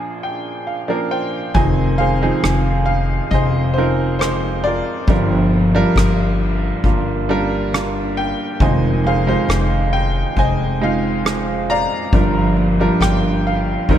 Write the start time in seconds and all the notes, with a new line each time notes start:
Already playing: A#1 A#2 F3 A#3 D4 G#4 A#4
0.23 G5
0.67 F5
0.88 F3 A#3 D4 A#4 D5
1.11 C5 G5
1.54 F1 F2 D#3 F3 C4 D#4 F4 G#4 C5 D#5 G#5, kick, ride
1.98 G#3 G#4 C5 F5, ride
2.22 F3 C4 D#4 G#4
2.42 F1 F4, cross-stick, ride
2.86 F5, ride
3.31 F1 G#3 C4 F4 G#4 C5 D#5, kick, ride
3.74 C4 C5, ride
3.78 F3 D#4 A#4
4.19 G#3 C4 F4 C5, cross-stick, ride
4.64 F4 A#4 D5, ride
5.07 G1 G2 F3 G3 D4 F4 A#4, kick, ride
5.52 A#3, ride
5.75 G3 D4 F4 A#4
5.96 G1 F4, kick, cross-stick, ride
6.40 ride
6.84 G1 A#3 D4 F4, kick, ride
7.28 G3 D4 F4 A#4, ride
7.73 A#3 D4 F4, cross-stick, ride
8.17 G5, ride
8.60 F1 F2 D#3 G#3 D#4 F4 C5 D#5 G#5, kick, ride
9.04 G#3 G#4 C5 F5, ride
9.27 G#3 D#4 F4 C5
9.48 F1 F4, cross-stick, ride
9.93 G5, ride
10.36 F1 G#3 C4 F4 C5 D#5 G#5, kick, ride
10.81 G#3 D#4 F4 F5, ride
11.24 G#3 C4 F4, cross-stick, ride
11.69 D5 F5 A#5, ride
12.12 G1 G2 F3 G3 D4 F4 A#4, kick, ride
12.56 A#3, ride
12.80 G3 D4 F4 A#4
13.00 G1 F4 G5, kick, cross-stick, ride
13.45 F5, ride
13.88 D#2 D#3 G3 C4 D#4 G4 A#4 C5 D#5, kick, ride